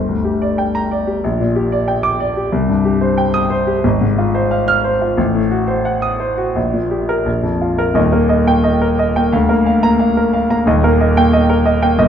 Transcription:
0.00 1.19 G1 medium
0.09 0.35 D2 soft
0.25 0.51 G4 soft
0.42 0.68 D5 medium
0.58 0.84 G5 medium
0.75 1.01 A#5 medium
0.91 1.17 D5 medium
1.07 1.23 G4 medium
1.24 2.49 A#1 medium
1.40 1.65 A#2 medium
1.56 1.81 G4 medium
1.72 1.98 D5 medium
1.88 2.14 G5 medium
2.03 2.30 D6 medium
2.20 2.46 D5 medium
2.37 2.53 G4 medium
2.52 3.80 C2 medium
2.69 2.95 G2 medium
2.85 3.11 G4 medium
3.01 3.28 C5 medium
3.18 3.44 G5 medium
3.34 3.61 D#6 medium
3.50 3.78 C5 medium
3.67 3.84 G4 medium
3.84 5.14 G#1 medium
4.01 4.28 G#2 medium
4.18 4.45 F4 medium
4.35 4.61 C5 medium
4.51 4.78 F5 medium
4.68 4.95 F6 medium
4.84 5.11 C5 medium
5.02 5.18 F4 medium
5.17 6.52 A1 medium
5.35 5.62 A2 medium
5.51 5.79 F#4 medium
5.67 5.96 C5 medium
5.85 6.13 F#5 medium
6.02 6.31 D#6 medium
6.20 6.49 C5 medium
6.37 6.56 F#4 medium
6.55 7.24 A#1 medium
6.73 7.02 A#2 soft
6.91 7.19 G4 soft
7.09 7.27 A#4 medium
7.26 7.94 A#1 medium
7.43 7.72 F2 soft
7.62 7.90 F4 soft
7.78 7.96 A#4 medium
7.94 9.27 D#1 medium
7.94 9.28 D#2 medium
7.94 8.23 D#5 medium
8.12 8.41 A#3 medium
8.12 8.40 A#4 medium
8.29 8.57 D#5 medium
8.47 8.75 A#3 medium
8.47 8.75 G5 medium
8.64 8.92 D#5 medium
8.81 9.09 A#4 medium
8.99 9.26 D#5 medium
9.16 9.33 A#3 medium
9.16 9.33 G5 medium
9.32 10.64 D2 medium
9.32 9.59 F5 medium
9.49 9.76 A#3 medium
9.49 9.76 A#4 medium
9.66 9.93 F5 medium
9.83 10.10 A#3 medium
9.83 10.10 A#5 medium
9.99 10.27 F5 medium
10.17 10.44 A#4 medium
10.33 10.61 F5 medium
10.50 10.67 A#3 medium
10.50 10.68 A#5 medium
10.66 11.95 D#1 medium
10.66 11.96 D#2 medium
10.66 10.94 D#5 medium
10.84 11.11 A#3 medium
10.84 11.11 A#4 medium
11.01 11.28 D#5 medium
11.17 11.44 A#3 medium
11.17 11.44 G5 medium
11.33 11.60 D#5 medium
11.49 11.76 A#4 medium
11.66 11.92 D#5 medium
11.82 11.99 A#3 medium
11.82 11.99 G5 medium
11.99 12.08 G1 medium
11.99 12.08 D#5 medium

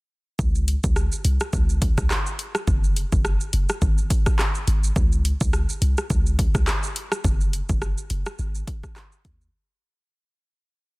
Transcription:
0.39 0.76 C#2 loud
0.39 kick loud
0.39 shaker medium
0.55 shaker medium
0.68 closed hi-hat medium
0.68 shaker medium
0.84 1.07 C#2 loud
0.84 kick loud
0.84 shaker medium
0.96 cross-stick medium
0.96 shaker medium
1.12 shaker medium
1.25 1.38 C2 loud
1.25 closed hi-hat medium
1.25 shaker medium
1.40 cross-stick loud
1.40 shaker medium
1.53 1.90 C#2 loud
1.53 kick loud
1.53 shaker medium
1.69 shaker medium
1.82 kick medium
1.82 closed hi-hat medium
1.82 shaker medium
1.98 2.08 C#2 medium
1.98 kick loud
1.98 cross-stick medium
1.98 shaker medium
2.10 cross-stick medium
2.10 clap medium
2.10 shaker medium
2.26 shaker medium
2.39 closed hi-hat medium
2.39 shaker medium
2.55 cross-stick loud
2.55 shaker medium
2.68 3.05 F#1 loud
2.68 kick loud
2.68 shaker medium
2.84 shaker medium
2.96 closed hi-hat medium
2.96 shaker medium
3.12 3.36 F#1 loud
3.12 kick loud
3.12 shaker medium
3.25 cross-stick medium
3.25 shaker medium
3.41 shaker medium
3.53 3.67 F#1 medium
3.53 closed hi-hat medium
3.53 shaker medium
3.69 cross-stick medium
3.69 shaker medium
3.82 4.06 G#1 loud
3.82 kick loud
3.82 shaker medium
3.98 shaker medium
4.10 kick medium
4.10 closed hi-hat medium
4.10 shaker medium
4.26 kick loud
4.26 cross-stick medium
4.26 shaker medium
4.39 cross-stick medium
4.39 clap medium
4.39 shaker medium
4.55 shaker medium
4.68 4.91 G#1 medium
4.68 closed hi-hat medium
4.68 shaker medium
4.84 shaker medium
4.96 5.33 C#2 loud
4.96 kick loud
4.96 shaker medium
5.12 shaker medium
5.25 closed hi-hat medium
5.25 shaker medium
5.41 5.65 C#2 loud
5.41 kick loud
5.41 shaker medium
5.53 cross-stick medium
5.53 shaker medium
5.69 shaker medium
5.82 5.95 C2 medium
5.82 closed hi-hat medium
5.82 shaker medium
5.98 cross-stick medium
5.98 shaker medium
6.10 6.47 C#2 loud
6.10 kick loud
6.10 shaker medium
6.26 shaker medium
6.39 kick loud
6.39 closed hi-hat medium
6.39 shaker medium
6.55 6.65 C#2 medium
6.55 kick loud
6.55 cross-stick medium
6.55 shaker medium
6.67 cross-stick medium
6.67 clap medium
6.67 shaker medium
6.83 shaker medium
6.96 closed hi-hat medium
6.96 shaker medium
7.12 cross-stick loud
7.12 shaker medium
7.24 7.62 F#1 loud
7.24 kick loud
7.24 shaker medium
7.41 shaker medium
7.53 closed hi-hat medium
7.53 shaker medium
7.69 7.93 F#1 loud
7.69 kick loud
7.69 shaker medium
7.82 cross-stick medium
7.82 shaker medium
7.98 shaker medium
8.10 8.24 F#1 medium
8.10 closed hi-hat medium
8.10 shaker medium
8.26 cross-stick loud
8.26 shaker medium
8.39 8.63 G#1 loud
8.39 shaker medium
8.55 shaker medium
8.67 kick medium
8.67 closed hi-hat medium
8.67 shaker medium
8.83 kick loud
8.83 cross-stick medium
8.83 shaker medium
8.96 cross-stick medium
8.96 clap medium
8.96 shaker medium
9.12 shaker medium
9.25 9.49 D#2 loud
9.25 kick medium
9.25 closed hi-hat medium
9.25 shaker medium
9.41 shaker medium

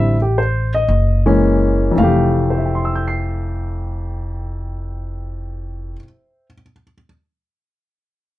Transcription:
0.00 0.85 A1 medium
0.00 0.15 D3 soft
0.00 0.15 G3 soft
0.00 0.15 C4 soft
0.00 0.16 E4 soft
0.00 0.20 E5 medium
0.22 0.37 G4 medium
0.38 0.72 C5 medium
0.74 1.23 D#5 medium
0.88 1.92 F#1 medium
1.26 1.93 E3 medium
1.26 1.93 G#3 medium
1.26 1.93 A#3 medium
1.26 1.94 C#4 medium
1.91 5.91 F2 medium
1.96 5.94 F1 medium
1.96 5.96 E3 medium
1.96 6.00 A3 medium
1.96 5.94 F5 medium
2.03 6.03 G4 medium
2.50 6.47 C5 soft
2.58 6.54 E5 soft
2.66 6.62 G5 soft
2.75 6.71 C6 soft
2.85 6.81 E6 soft
2.95 6.92 G6 soft
3.08 7.04 C7 soft

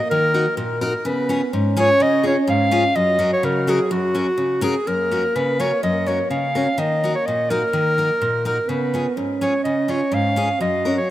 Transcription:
0.00 0.82 A#3 medium
0.10 0.46 D#3 medium
0.10 0.54 A#4 loud
0.34 0.45 D#4 soft
0.34 0.45 F#4 medium
0.34 0.45 A#4 soft
0.57 0.93 A#2 medium
0.57 0.80 A#4 medium
0.81 0.92 D#4 soft
0.81 0.93 F#4 medium
0.81 0.93 A#4 medium
0.81 1.09 A#4 medium
1.05 1.41 C#3 medium
1.05 1.55 B3 medium
1.05 1.51 B4 medium
1.29 1.40 C#4 medium
1.29 1.41 F4 soft
1.29 1.40 G#4 medium
1.53 1.89 G#2 medium
1.53 2.96 C#4 medium
1.77 1.88 C#4 medium
1.77 1.88 F4 medium
1.77 1.88 G#4 medium
1.77 2.04 C#5 loud
2.00 2.36 C#3 medium
2.00 2.26 D#5 loud
2.23 2.35 C#4 soft
2.23 2.35 F4 soft
2.23 2.35 G#4 medium
2.28 2.38 C#5 medium
2.47 2.84 G#2 medium
2.47 2.97 F5 medium
2.71 2.83 C#4 medium
2.71 2.83 F4 medium
2.71 2.83 G#4 medium
2.95 3.31 F#2 medium
2.95 4.60 F#3 medium
2.95 3.32 D#5 loud
3.19 3.30 C#4 medium
3.19 3.30 F#4 medium
3.19 3.30 A#4 soft
3.33 3.46 C#5 medium
3.43 3.79 C#3 medium
3.43 3.71 A#4 medium
3.67 3.78 C#4 medium
3.67 3.78 F#4 medium
3.67 3.91 G#4 medium
3.67 3.79 A#4 medium
3.91 4.27 F#2 medium
3.91 4.60 F#4 medium
4.15 4.26 C#4 medium
4.15 4.26 F#4 soft
4.15 4.26 A#4 medium
4.38 4.74 C#3 medium
4.61 4.73 C#4 medium
4.61 4.73 F#4 medium
4.61 4.89 G#4 medium
4.61 4.74 A#4 medium
4.86 5.23 F#2 medium
4.86 6.32 A#3 medium
4.86 5.38 A#4 loud
5.11 5.22 C#4 soft
5.11 5.23 F#4 soft
5.11 5.23 A#4 soft
5.36 5.71 C#3 medium
5.36 5.62 B4 medium
5.60 5.70 C#4 medium
5.60 5.70 F#4 medium
5.60 5.71 A#4 medium
5.60 5.83 C#5 medium
5.83 6.19 F#2 medium
5.83 6.09 D#5 medium
6.06 6.18 C#4 soft
6.06 6.18 F#4 soft
6.06 6.18 A#4 soft
6.06 6.30 C#5 medium
6.30 6.67 C#3 medium
6.30 6.81 C#4 medium
6.30 6.81 F5 medium
6.55 6.66 C#4 medium
6.55 6.66 F#4 medium
6.55 6.66 A#4 medium
6.78 7.14 D#3 medium
6.78 8.47 A#3 medium
6.78 7.15 D#5 medium
7.04 7.14 D#4 medium
7.04 7.14 F#4 soft
7.04 7.14 A#4 medium
7.15 7.28 C#5 medium
7.26 7.63 A#2 medium
7.26 7.52 D#5 medium
7.50 7.61 D#4 medium
7.50 7.61 F#4 soft
7.50 8.46 A#4 loud
7.50 7.62 A#4 medium
7.73 8.09 D#3 medium
7.98 8.09 D#4 soft
7.98 8.09 F#4 soft
7.98 8.09 A#4 soft
8.22 8.58 A#2 medium
8.45 8.57 D#4 medium
8.45 8.57 F#4 medium
8.45 8.57 A#4 soft
8.45 8.70 A#4 medium
8.67 9.06 C#3 medium
8.67 9.18 B3 medium
8.67 9.15 B4 medium
8.94 9.05 C#4 soft
8.94 9.05 F4 soft
8.94 9.05 G#4 medium
9.16 9.53 G#2 medium
9.16 10.62 C#4 medium
9.41 9.53 C#4 medium
9.41 9.53 F4 medium
9.41 9.53 G#4 soft
9.41 9.63 C#5 medium
9.64 10.01 C#3 medium
9.64 9.92 D#5 medium
9.88 10.00 C#4 soft
9.88 10.00 F4 medium
9.88 10.00 G#4 soft
9.88 10.16 C#5 medium
10.12 10.48 G#2 medium
10.12 10.61 F5 medium
10.36 10.48 C#4 medium
10.36 10.48 F4 soft
10.36 10.48 G#4 medium
10.60 10.97 F#2 medium
10.60 11.10 F#3 medium
10.60 10.95 D#5 medium
10.85 10.96 C#4 medium
10.85 10.96 F#4 soft
10.85 10.96 A#4 medium
10.98 11.10 C#5 medium

